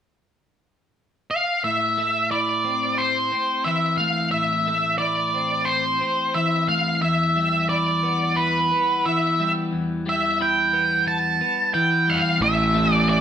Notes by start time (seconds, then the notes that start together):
1.31 F5
1.64 A2 E5
1.98 A3
2.31 E4 D5
2.64 C4
2.98 C5
3.32 C4
3.65 E3 E5
3.98 A3 F5
4.31 A2 E5
4.67 A3
4.98 E4 D5
5.34 C4
5.65 C5
6.01 C4
6.34 E3 E5
6.68 A3 F5
7.02 E2 E5
7.36 G3
7.69 E4 D5
8.03 B3
8.36 E4 B4
8.72 B3
9.05 E3 E5
9.40 G3
9.73 E2
10.06 G3 E5
10.40 E4 G5
10.73 B3
11.08 A5
11.41 B3
11.74 E3 G5
12.08 G3 F5
12.40 A1 A2 E5
12.74 A3
12.93 D5
13.08 E4 D5